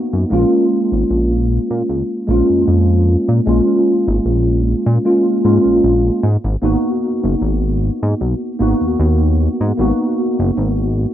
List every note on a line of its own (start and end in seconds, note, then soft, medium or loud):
0.00 0.31 A#3 medium
0.00 0.33 B3 medium
0.00 0.33 D#4 medium
0.00 0.33 F#4 medium
0.13 0.25 F#2 medium
0.30 0.45 A#1 loud
0.30 2.24 G#3 medium
0.30 2.24 A#3 medium
0.30 2.25 C#4 medium
0.30 2.25 F4 loud
0.92 1.04 G#1 loud
1.10 1.59 A#1 medium
1.71 1.83 A#2 loud
1.89 2.03 C#2 medium
2.28 2.42 A#1 medium
2.28 3.42 G#3 medium
2.28 3.43 A#3 medium
2.28 3.43 C#4 medium
2.28 3.44 F4 medium
2.50 2.65 F2 soft
2.68 3.17 F2 medium
3.29 3.41 A#2 medium
3.46 3.61 A#1 loud
3.46 5.00 G#3 medium
3.46 5.01 A#3 medium
3.46 5.01 C#4 medium
3.46 5.02 F4 medium
4.08 4.20 G#1 loud
4.26 4.75 A#1 medium
4.86 4.98 A#2 loud
5.05 5.40 G#3 medium
5.05 5.40 A#3 medium
5.05 5.40 C#4 medium
5.05 5.41 F4 medium
5.44 5.58 G#2 medium
5.44 6.21 G#3 medium
5.44 6.21 A#3 medium
5.44 6.22 C#4 medium
5.44 6.22 F4 medium
5.65 5.80 A#1 soft
5.84 6.10 A#1 medium
6.23 6.37 G#2 loud
6.45 6.56 G#1 loud
6.62 6.77 G#1 loud
6.62 8.55 A#3 medium
6.62 8.56 B3 medium
6.62 8.56 D#4 medium
6.62 8.57 F#4 loud
7.24 7.35 F#1 loud
7.42 7.90 G#1 medium
8.03 8.14 G#2 medium
8.21 8.35 B1 medium
8.59 8.74 G#1 medium
8.59 9.74 A#3 medium
8.59 9.74 B3 medium
8.59 9.75 D#4 medium
8.59 9.75 F#4 loud
8.81 8.96 D#2 soft
8.99 9.48 D#2 medium
9.60 9.72 G#2 medium
9.77 9.92 G#1 loud
9.77 11.14 A#3 medium
9.77 11.14 B3 medium
9.77 11.14 D#4 medium
9.77 11.14 F#4 loud
10.39 10.51 F#1 loud
10.57 11.06 G#1 medium